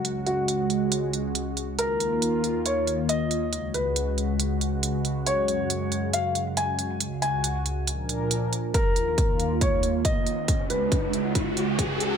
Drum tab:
HH |xxxxxxxx|xxxxxxxx|xxxxxxxx|xxxxxxxx|
BD |--------|--------|--------|--------|

HH |xxxxxxxx|xxxxxxxx|xxxxxxxx|
BD |--------|o-o-o-o-|o-o-o-o-|